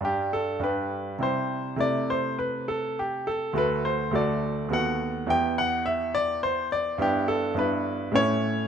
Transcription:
<<
  \new Staff \with { instrumentName = "Grand piano" } { \time 3/4 \key g \major \tempo 4 = 104 g'8 a'8 b'4 c''4 | d''8 c''8 b'8 a'8 g'8 a'8 | b'8 c''8 d''4 fis''4 | g''8 fis''8 e''8 d''8 c''8 d''8 |
\key e \dorian g'8 a'8 b'4 cis''4 | }
  \new Staff \with { instrumentName = "Grand piano" } { \time 3/4 \key g \major <g, g d'>4 <g, g d' g'>4 <c g e' g'>4 | <c a e'>2. | <d, a fis' a'>4 <d, a fis' a'>4 <dis, b fis' a'>4 | <e, b e' g'>2. |
\key e \dorian <g, b d' e'>4 <g, b d' e'>4 <a, a cis' e'>4 | }
>>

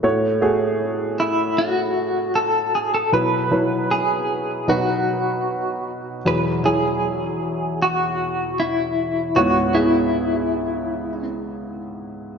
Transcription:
<<
  \new Staff \with { instrumentName = "Clean electric guitar" } { \time 4/4 \key e \major \tempo 4 = 78 r4. e'8 fis'4 a'8 gis'16 a'16 | b'4 gis'4 fis'4. r8 | b'8 gis'4. fis'4 e'4 | fis'8 e'2 r4. | }
  \new Staff \with { instrumentName = "Upright piano" } { \time 4/4 \key e \major <a fis' cis''>8 <a fis' gis'>2 r4. | <fis e' b'>8 <fis e' b'>4. <fis dis' b'>2 | <fis e' gis'>8 <fis e' gis'>2 r4. | <b e' cis''>8 <b e' gis'>2 r4. | }
  \new Staff \with { instrumentName = "Upright piano" } { \clef bass \time 4/4 \key e \major a,1 | b,2 b,2 | <e, b,>1 | <cis, gis,>1 | }
>>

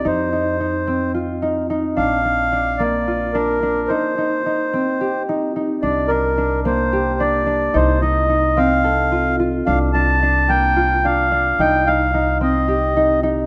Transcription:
<<
  \new Staff \with { instrumentName = "Accordion" } { \time 7/8 \key c \dorian \tempo 4 = 109 c''2 r4. | f''4. d''4 bes'4 | c''2~ c''8 r4 | d''8 bes'4 c''4 d''4 |
c''8 ees''4 f''4. r8 | f''8 a''4 g''4 f''4 | g''8 f''4 ees''4. r8 | }
  \new Staff \with { instrumentName = "Harp" } { \time 7/8 \key c \dorian ees'8 ees'8 ees'8 c'8 f'8 ees'8 ees'8 | d'8 d'8 d'8 bes8 f'8 d'8 d'8 | ees'8 ees'8 ees'8 c'8 g'8 ees'8 ees'8 | d'8 d'8 d'8 bes8 g'8 d'8 d'8 |
ees'8 ees'8 ees'8 c'8 a'8 f'8 f'8 | d'8 d'8 d'8 bes8 f'8 d'8 d'8 | ees'8 ees'8 ees'8 c'8 g'8 ees'8 ees'8 | }
  \new Staff \with { instrumentName = "Upright bass" } { \clef bass \time 7/8 \key c \dorian f,2.~ f,8 | bes,,2.~ bes,,8 | r2. r8 | c,2.~ c,8 |
c,2.~ c,8 | c,2.~ c,8 | c,2.~ c,8 | }
>>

